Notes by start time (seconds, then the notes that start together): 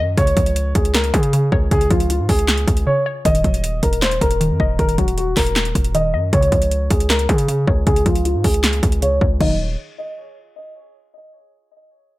Already playing: D#3
0.00 F#2 D#5
0.17 C#2 C#3 C#5, kick, closed hi-hat
0.27 closed hi-hat
0.37 C#2 F3, kick, closed hi-hat
0.46 closed hi-hat
0.56 closed hi-hat
0.75 C#2 G#4, kick, closed hi-hat
0.85 closed hi-hat
0.94 A#4, snare, clap, closed hi-hat
1.04 closed hi-hat
1.14 C#3 G#4, kick, closed hi-hat
1.23 closed hi-hat
1.33 C#3, closed hi-hat
1.52 C#2 C#5, kick
1.71 C#2 C#3 G#4, kick, closed hi-hat
1.81 closed hi-hat
1.90 C#2 F3 F4, kick, closed hi-hat
2.00 closed hi-hat
2.10 F4, closed hi-hat
2.19 G#2
2.29 C#2 G#4, kick, open hi-hat
2.39 closed hi-hat
2.48 snare, clap, closed hi-hat
2.58 closed hi-hat
2.68 C#2, kick, closed hi-hat
2.77 closed hi-hat
2.87 C#3 C#5
3.06 C#5
3.25 D#1 D#3 D#5, kick, closed hi-hat
3.35 closed hi-hat
3.44 D#1 F#3, kick, closed hi-hat
3.54 closed hi-hat
3.64 closed hi-hat
3.83 D#1 A#4, kick, closed hi-hat
3.93 closed hi-hat
4.02 C5, snare, clap, closed hi-hat
4.11 closed hi-hat
4.21 D#1 A#4, kick, closed hi-hat
4.31 closed hi-hat
4.41 D#3, closed hi-hat
4.50 F#2
4.60 D#1 D#5, kick
4.79 D#1 D#3 A#4, kick, closed hi-hat
4.89 closed hi-hat
4.98 D#1 F#3 F#4, kick, closed hi-hat
5.08 closed hi-hat
5.18 F#4, closed hi-hat
5.37 D#1 A#4, kick, snare, clap, open hi-hat
5.47 closed hi-hat
5.56 snare, clap, closed hi-hat
5.65 closed hi-hat
5.75 D#1, kick, closed hi-hat
5.84 closed hi-hat
5.95 D#3 D#5, closed hi-hat
6.14 F#2 D#5
6.33 C#2 C#3 C#5, kick, closed hi-hat
6.42 closed hi-hat
6.52 C#2 F3, kick, closed hi-hat
6.62 closed hi-hat
6.71 closed hi-hat
6.91 C#2 G#4, kick, closed hi-hat
7.00 closed hi-hat
7.10 A#4, snare, clap, closed hi-hat
7.19 closed hi-hat
7.29 C#3 G#4, kick, closed hi-hat
7.38 closed hi-hat
7.48 C#3, closed hi-hat
7.67 C#2 C#5, kick
7.87 C#2 C#3 G#4, kick, closed hi-hat
7.96 closed hi-hat
8.06 C#2 F3 F4, kick, closed hi-hat
8.15 closed hi-hat
8.25 F4, closed hi-hat
8.35 G#2
8.44 C#2 G#4, kick, open hi-hat
8.54 closed hi-hat
8.64 snare, clap, closed hi-hat
8.73 closed hi-hat
8.83 C#2, kick, closed hi-hat
8.92 closed hi-hat
9.02 C#3 C#5, closed hi-hat
9.21 C#2 C#5, kick
9.41 D#1 D#3 F#3 A#3 D#4 D#5, kick, crash